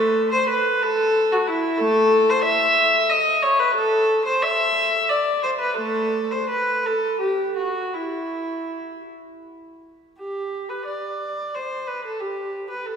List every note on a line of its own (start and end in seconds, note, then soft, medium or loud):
0.00 0.30 A3 medium
0.00 0.32 A4 medium
0.32 0.49 C5 medium
0.49 0.81 B4 medium
0.82 1.31 A4 loud
1.32 1.48 F#4 medium
1.47 1.79 E4 medium
1.78 2.25 A3 medium
1.78 2.28 A4 loud
2.29 2.45 C5 medium
2.44 3.07 E5 loud
3.10 3.42 D#5 medium
3.42 3.58 C#5 medium
3.59 3.75 B4 medium
3.75 4.24 A4 loud
4.25 4.42 C5 medium
4.42 5.09 E5 loud
5.09 5.42 D5 medium
5.43 5.49 C5 medium
5.59 5.76 B4 medium
5.76 6.26 A3 medium
5.76 6.29 A4 medium
6.31 6.48 C5 medium
6.50 6.83 B4 medium
6.86 7.20 A4 medium
7.19 7.55 G4 medium
7.57 7.93 F#4 medium
7.94 9.09 E4 medium
10.19 10.67 G4 medium
10.69 10.87 B4 medium
10.86 11.53 D5 medium
11.54 11.88 C5 medium
11.87 12.04 B4 medium
12.05 12.21 A4 medium
12.20 12.70 G4 medium
12.70 12.87 B4 medium
12.86 12.96 A4 medium